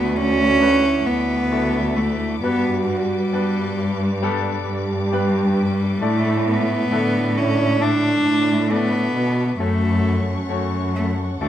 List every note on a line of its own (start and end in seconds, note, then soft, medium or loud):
0.00 1.02 D2 loud
0.00 0.11 D3 medium
0.00 0.60 A3 medium
0.00 0.18 B3 loud
0.00 1.52 D4 medium
0.00 0.61 E4 medium
0.00 0.56 F#4 loud
0.00 0.61 F#4 medium
0.00 1.53 A4 medium
0.00 2.38 A4 medium
0.00 0.56 B4 medium
0.00 2.39 E5 medium
0.00 2.39 F#5 medium
0.00 9.56 D6 medium
0.16 1.08 C#4 loud
0.60 1.47 D3 medium
0.60 1.47 A3 medium
0.60 2.42 E4 loud
0.60 1.47 E4 medium
0.60 1.47 F#4 medium
0.60 1.47 B4 medium
1.06 2.38 D2 medium
1.06 1.99 B3 loud
1.51 2.38 A3 medium
1.51 2.38 D4 medium
1.51 2.38 E4 medium
1.51 2.38 F#4 medium
1.51 2.38 A4 medium
1.97 2.42 A3 medium
2.42 3.29 G2 loud
2.42 3.74 G2 medium
2.42 3.29 G3 medium
2.42 2.84 B3 loud
2.42 3.29 B3 medium
2.42 3.29 D4 medium
2.42 3.96 F#4 loud
2.42 5.98 B4 medium
2.42 3.29 B4 medium
2.42 5.98 D5 medium
2.88 4.63 G3 medium
3.33 4.63 G2 loud
3.33 4.18 G3 medium
3.33 4.18 B3 medium
3.33 4.18 D4 medium
3.33 4.18 B4 medium
4.22 5.07 G3 medium
4.22 5.08 B3 medium
4.22 5.08 D4 medium
4.22 5.98 G4 loud
4.22 5.08 G4 medium
4.22 5.08 A4 loud
4.67 5.98 G2 loud
5.12 6.04 G3 medium
5.12 5.98 G3 medium
5.12 5.98 B3 medium
5.12 5.98 D4 medium
5.12 5.98 G4 medium
5.12 5.98 B4 medium
6.01 7.32 A2 medium
6.01 6.87 A2 loud
6.01 6.87 A3 medium
6.01 6.47 A3 loud
6.01 6.87 D4 medium
6.01 6.87 E4 medium
6.01 6.88 E4 loud
6.01 6.87 A4 medium
6.01 9.57 A4 medium
6.01 6.87 D5 medium
6.01 9.57 E5 medium
6.47 7.39 B3 loud
6.92 8.22 A2 loud
6.92 7.76 D3 medium
6.92 7.76 A3 medium
6.92 9.33 D4 loud
6.92 7.77 E4 medium
6.92 7.77 A4 medium
6.92 7.77 B4 medium
7.37 7.83 C#4 loud
7.80 8.66 A3 medium
7.80 8.66 D4 medium
7.80 8.72 D4 loud
7.80 8.66 E4 medium
7.80 8.66 A4 medium
7.80 8.66 D5 medium
8.26 9.11 A2 loud
8.70 9.55 A3 medium
8.70 9.60 B3 loud
8.70 9.55 D4 medium
8.70 9.56 E4 medium
8.70 9.56 A4 medium
8.70 9.56 D5 medium
9.15 9.57 B2 loud
9.59 10.46 F#2 loud
9.59 10.46 A3 medium
9.59 10.46 A3 loud
9.59 10.45 C#4 medium
9.59 11.37 C#4 loud
9.59 10.46 F#4 medium
9.59 11.48 A4 medium
9.59 10.46 A4 medium
9.59 11.39 C#5 medium
9.59 10.46 C#5 medium
9.59 11.48 F#5 medium
9.59 11.39 C#6 medium
10.49 11.37 F#2 loud
10.49 11.36 A3 medium
10.49 11.36 C#4 medium
10.49 11.36 F#4 medium
10.49 11.36 A4 medium
10.49 11.36 C#5 medium
10.96 11.16 A3 medium
11.41 11.48 D2 loud
11.41 11.48 D3 medium
11.41 11.48 A3 medium
11.41 11.48 D4 medium
11.41 11.48 D4 loud
11.41 11.48 E4 medium
11.41 11.48 F#4 medium
11.41 11.48 A4 medium
11.41 11.48 E5 medium
11.41 11.48 D6 medium